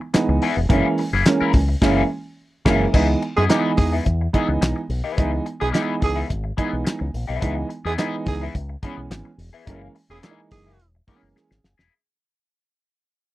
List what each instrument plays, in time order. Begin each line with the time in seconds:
0.01 muted clean electric guitar stroke
0.14 upright piano E3 G#3 B3 D#4, muted clean electric guitar stroke, muted fingered electric bass stroke, snare, clap, closed hi-hat
0.28 fingered electric bass C#2, muted clean electric guitar stroke
0.42 clean electric guitar B3 E4 G#4, open hi-hat
0.57 fingered electric bass E1, muted clean electric guitar stroke
0.69 upright piano E3 G#3 A#3 C#4, clean electric guitar A#3 E4 G#4, kick, closed hi-hat
0.98 muted clean electric guitar stroke, open hi-hat
1.13 fingered electric bass F#1, clean electric guitar A#3 E4 G#4
1.25 upright piano E3 G#3 A#3 C#4, snare, clap, closed hi-hat
1.41 clean electric guitar A#3 E4 A#4, muted fingered electric bass stroke
1.53 fingered electric bass C#2, muted clean electric guitar stroke, kick, open hi-hat
1.68 muted clean electric guitar stroke
1.82 fingered electric bass F#1, upright piano E3 G#3 A#3 C#4, clean electric guitar A#3 E4 G#4, kick, snare, crash
2.65 fingered electric bass F#1, upright piano E3 G#3 A#3 C#4, clean electric guitar A#3 E4 G#4, kick, snare, crash
2.93 fingered electric bass C#2, upright piano E3 G#3 B3 D#4, clean electric guitar B3 E4 G#4, kick, crash
3.09 muted clean electric guitar stroke
3.22 muted clean electric guitar stroke, closed hi-hat
3.36 fingered electric bass F#2, upright piano B3 D#4, clean electric guitar B3 E4 G#4, tenor saxophone G#4
3.49 upright piano E3 G#3 B3 D#4, clean electric guitar B3 E4 G#4, snare, clap, closed hi-hat
3.77 fingered electric bass E2, tenor saxophone G#4, muted clean electric guitar stroke, kick, open hi-hat
3.92 clean electric guitar B3 E4 G#4
4.06 fingered electric bass E2, muted clean electric guitar stroke, kick, closed hi-hat
4.21 muted clean electric guitar stroke
4.33 upright piano E3 G#3 B3 D#4, clean electric guitar B3 E4 G#4, kick, closed hi-hat
4.48 fingered electric bass C#2, muted clean electric guitar stroke
4.61 fingered electric bass B1, muted clean electric guitar stroke, snare, clap, closed hi-hat
4.76 muted clean electric guitar stroke
4.89 fingered electric bass B1, open hi-hat
5.04 clean electric guitar B3 E4 G#4
5.16 fingered electric bass C#2, upright piano E3 G#3 B3 D#4, clean electric guitar B3 E4 G#4, kick, closed hi-hat
5.32 muted clean electric guitar stroke
5.46 muted clean electric guitar stroke, closed hi-hat
5.60 fingered electric bass B1, upright piano B3 D#4, clean electric guitar B3 E4 G#4, tenor saxophone G#4
5.73 upright piano E3 G#3 B3 D#4, clean electric guitar B3 E4 G#4, snare, clap, closed hi-hat
6.00 fingered electric bass C#2, tenor saxophone G#4, muted clean electric guitar stroke, kick, open hi-hat
6.15 clean electric guitar B3 E4 G#4
6.28 fingered electric bass G#1, muted clean electric guitar stroke, kick, closed hi-hat
6.44 muted clean electric guitar stroke
6.57 upright piano E3 G#3 B3 D#4, clean electric guitar B3 E4 G#4, kick, closed hi-hat
6.72 fingered electric bass B1, muted clean electric guitar stroke
6.84 muted clean electric guitar stroke, snare, clap, closed hi-hat
6.99 fingered electric bass C#2, muted clean electric guitar stroke
7.14 fingered electric bass A#1, open hi-hat
7.27 fingered electric bass B1, clean electric guitar B3 E4 G#4
7.40 fingered electric bass C#2, upright piano E3 G#3 B3 D#4, clean electric guitar B3 E4 G#4, kick, closed hi-hat
7.56 muted clean electric guitar stroke
7.69 muted clean electric guitar stroke, closed hi-hat
7.85 fingered electric bass E2, upright piano B3 D#4, clean electric guitar B3 E4 G#4, tenor saxophone G#4
7.98 upright piano E3 G#3 B3 D#4, clean electric guitar B3 E4 G#4, snare, clap, closed hi-hat
8.26 fingered electric bass C#2, tenor saxophone G#4, muted clean electric guitar stroke, kick, open hi-hat
8.41 clean electric guitar B3 E4 G#4
8.55 fingered electric bass C#2, muted clean electric guitar stroke, kick, closed hi-hat
8.69 muted clean electric guitar stroke
8.83 upright piano E3 G#3 B3 C#4, clean electric guitar B3 E4 G#4, kick, closed hi-hat
8.97 fingered electric bass B1, muted clean electric guitar stroke
9.10 fingered electric bass G#1, muted clean electric guitar stroke, snare, clap, closed hi-hat
9.25 muted clean electric guitar stroke
9.38 fingered electric bass E1, open hi-hat
9.53 clean electric guitar B3 E4 G#4
9.66 fingered electric bass F#1, upright piano E3 G#3 A#3 C#4, clean electric guitar A#3 E4 G#4, kick, closed hi-hat
9.82 muted clean electric guitar stroke
9.95 muted clean electric guitar stroke, open hi-hat
10.09 fingered electric bass E1, upright piano A#3 C#4, clean electric guitar A#3 E4 G#4, tenor saxophone G#4
10.23 upright piano E3 G#3 A#3 D4, clean electric guitar A#3 E4 G#4, snare, clap, closed hi-hat
10.31 upright piano D#4
10.51 fingered electric bass F#1, tenor saxophone G#4, muted clean electric guitar stroke, kick, open hi-hat
10.66 clean electric guitar A#3 E4 G#4
10.79 fingered electric bass E1, closed hi-hat
10.95 muted clean electric guitar stroke
11.07 upright piano E3 G#3 A#3 B3, clean electric guitar A#3 E4 G#4, kick, open hi-hat
11.15 upright piano C#4
11.22 fingered electric bass F#1, muted clean electric guitar stroke
11.36 upright piano G#4, muted clean electric guitar stroke, snare
11.51 fingered electric bass G#1, muted clean electric guitar stroke, snare
11.63 fingered electric bass F#1, snare
11.78 fingered electric bass E1, clean electric guitar A#3 E4 G#4, snare